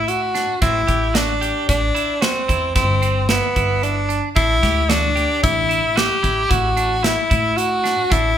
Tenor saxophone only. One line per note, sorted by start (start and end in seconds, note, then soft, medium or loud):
0.00 0.10 E4 medium
0.09 0.61 F#4 medium
0.62 1.17 E4 medium
1.16 1.69 D4 medium
1.69 2.23 D4 medium
2.22 2.75 C4 medium
2.76 3.30 C4 medium
3.29 3.85 B3 medium
3.83 4.23 D4 medium
4.36 4.91 E4 loud
4.89 5.43 D4 medium
5.43 5.99 E4 medium
5.97 6.52 G4 loud
6.51 7.06 F#4 medium
7.04 7.58 E4 medium
7.57 8.13 F#4 medium
8.12 8.38 E4 loud